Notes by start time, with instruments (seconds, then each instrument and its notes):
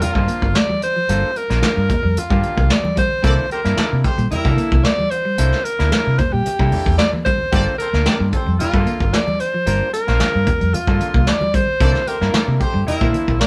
0.00 horn section G3 F4 A#4, alto saxophone F4, muted clean electric guitar stroke, muted fingered electric bass stroke, closed hi-hat, muted conga, low conga
0.15 fingered electric bass G2, clav A#3 D4 F4 C5, kick
0.28 clean electric guitar A#3, closed hi-hat
0.42 fingered electric bass G1, clean electric guitar A#3, kick
0.55 alto saxophone D5, snare, closed hi-hat, high conga
0.69 clean electric guitar G3, high conga
0.82 alto saxophone C5, muted clean electric guitar stroke, closed hi-hat
0.96 clean electric guitar F3
1.09 fingered electric bass G1, clean electric guitar G3, clav A#3 D4 F4 A4, closed hi-hat, muted conga
1.36 alto saxophone A#4, muted clean electric guitar stroke, closed hi-hat
1.50 fingered electric bass A#1, clean electric guitar A#3, clav A#3 D4 F4 A#4, snare, closed hi-hat
1.62 muted fingered electric bass stroke, snare, closed hi-hat, high conga
1.77 fingered electric bass G2
1.89 clean electric guitar A#3, kick, closed hi-hat, low conga
2.03 fingered electric bass F2, clean electric guitar G3
2.17 alto saxophone F4, muted fingered electric bass stroke, closed hi-hat, muted conga
2.30 fingered electric bass G2, clean electric guitar G3, clav A#3 D4 F4 G4, kick
2.42 muted clean electric guitar stroke, closed hi-hat, muted conga
2.57 fingered electric bass C2, clean electric guitar A#3, kick
2.69 alto saxophone D5, muted clean electric guitar stroke, snare, closed hi-hat, high conga
2.84 clean electric guitar G3, high conga
2.96 clean electric guitar G3, alto saxophone C5, kick, closed hi-hat
3.23 fingered electric bass C2, horn section A#3 A4 D5, clav A#3 D4 E4 A4, clean electric guitar C4, kick, closed hi-hat, muted conga
3.50 horn section A3 G4 C5, alto saxophone A#4, muted clean electric guitar stroke, closed hi-hat
3.64 fingered electric bass G2, clean electric guitar A#3, clav A#3 D4 E4 A#4, snare, closed hi-hat
3.77 horn section A#3 A4 D5, muted fingered electric bass stroke, snare, closed hi-hat, high conga
3.91 fingered electric bass C3, clean electric guitar A#3
4.04 horn section A3 G4 C5, muted clean electric guitar stroke, kick, closed hi-hat
4.18 fingered electric bass A#2, clean electric guitar G3, closed hi-hat
4.31 horn section G3 E4 A#4, alto saxophone E4, muted clean electric guitar stroke, muted fingered electric bass stroke, closed hi-hat, muted conga, low conga
4.45 fingered electric bass C3, clav A#3 D4 E4 A4, kick
4.57 clean electric guitar A#3, closed hi-hat
4.72 fingered electric bass C2, clean electric guitar A#3, kick
4.84 alto saxophone D5, snare, closed hi-hat, high conga
4.98 clean electric guitar G3, high conga
5.10 alto saxophone C5, muted clean electric guitar stroke, closed hi-hat
5.25 clean electric guitar G3
5.38 fingered electric bass C2, clav A#3 D4 E4 A4, clean electric guitar C4, closed hi-hat, muted conga
5.52 snare
5.64 alto saxophone A#4, muted clean electric guitar stroke, closed hi-hat
5.79 fingered electric bass D2, clean electric guitar A#3, clav A#3 D4 E4 A#4, snare, closed hi-hat
5.92 muted clean electric guitar stroke, muted fingered electric bass stroke, snare, closed hi-hat, high conga
6.07 fingered electric bass C3
6.18 clean electric guitar A#3, alto saxophone C5, kick, closed hi-hat, low conga
6.32 fingered electric bass A#2, clean electric guitar G3, alto saxophone G4
6.46 muted fingered electric bass stroke, closed hi-hat, muted conga
6.59 fingered electric bass C3, clean electric guitar G3, clav A#3 D4 E4 A4, kick
6.72 muted clean electric guitar stroke, open hi-hat, low conga
6.86 fingered electric bass E2, clean electric guitar A#3, kick
6.98 alto saxophone D5, snare, closed hi-hat, high conga
7.13 clean electric guitar A#3, high conga
7.25 clean electric guitar G3, alto saxophone C5, kick, closed hi-hat
7.40 high conga
7.52 fingered electric bass G1, clean electric guitar G3, horn section A#3 G4 D5, clav A#3 D4 F4 A4, kick, closed hi-hat, muted conga
7.78 horn section C4 A4 C5, alto saxophone A#4, muted clean electric guitar stroke, closed hi-hat
7.93 fingered electric bass D2, clean electric guitar A#3, clav A#3 D4 F4 A#4, snare
8.06 horn section A#3 G4 D5, muted fingered electric bass stroke, snare, closed hi-hat, high conga
8.20 fingered electric bass G2, clean electric guitar A#3
8.32 horn section C4 A4 C5, muted clean electric guitar stroke, kick, closed hi-hat
8.47 fingered electric bass F2, clean electric guitar G3
8.59 horn section G3 F4 A#4, alto saxophone F4, muted clean electric guitar stroke, muted fingered electric bass stroke, closed hi-hat, muted conga, low conga
8.74 fingered electric bass G2, clav A3 D4 F4 A4, kick
8.81 clav A#3
8.86 clean electric guitar A#3, closed hi-hat, muted conga
9.00 fingered electric bass G1, clean electric guitar A#3, kick
9.13 alto saxophone D5, snare, closed hi-hat, high conga
9.27 clean electric guitar G3, high conga
9.40 alto saxophone C5, muted clean electric guitar stroke, closed hi-hat
9.54 clean electric guitar F3
9.66 fingered electric bass G1, clean electric guitar G3, clav A#3 D4 F4 A#4, closed hi-hat, muted conga
9.93 alto saxophone A#4, muted clean electric guitar stroke, closed hi-hat
10.07 fingered electric bass A#1, clean electric guitar A#3, clav A#3 D4 F4 C5, snare, closed hi-hat
10.20 muted clean electric guitar stroke, muted fingered electric bass stroke, snare, closed hi-hat, high conga
10.35 fingered electric bass G2
10.47 clean electric guitar A#3, kick, closed hi-hat, low conga
10.61 fingered electric bass F2, clean electric guitar G3, closed hi-hat
10.74 alto saxophone F4, muted fingered electric bass stroke, closed hi-hat, muted conga
10.87 fingered electric bass G2, clean electric guitar G3, clav A#3 D4 F4 A4, kick
11.00 muted clean electric guitar stroke, closed hi-hat, muted conga
11.14 fingered electric bass C2, clean electric guitar A#3, kick
11.27 alto saxophone D5, muted clean electric guitar stroke, snare, closed hi-hat, high conga
11.41 clean electric guitar G3, high conga
11.54 clean electric guitar G3, alto saxophone C5, kick, closed hi-hat
11.80 fingered electric bass C2, horn section A#3 A4 D5, clav A#3 D4 E4 A4, clean electric guitar C4, kick, closed hi-hat, muted conga
11.95 snare
12.07 horn section A3 G4 C5, alto saxophone A#4, muted clean electric guitar stroke, closed hi-hat
12.21 fingered electric bass G2, clav A#3 D4 E4 A#4, clean electric guitar A#3, snare
12.33 horn section A#3 A4 D5, muted fingered electric bass stroke, snare, closed hi-hat, high conga
12.47 fingered electric bass C3, clean electric guitar A#3
12.60 horn section A3 G4 C5, muted clean electric guitar stroke, kick, closed hi-hat
12.74 fingered electric bass G2, clean electric guitar G3
12.87 horn section G3 E4 A#4, alto saxophone E4, muted clean electric guitar stroke, muted fingered electric bass stroke, closed hi-hat, muted conga, low conga
13.01 fingered electric bass A#2, clav A#3 D4 E4 C5, kick
13.13 clean electric guitar A#3, closed hi-hat, muted conga
13.27 fingered electric bass A#1, clean electric guitar A#3, kick
13.40 alto saxophone D5, snare, closed hi-hat, high conga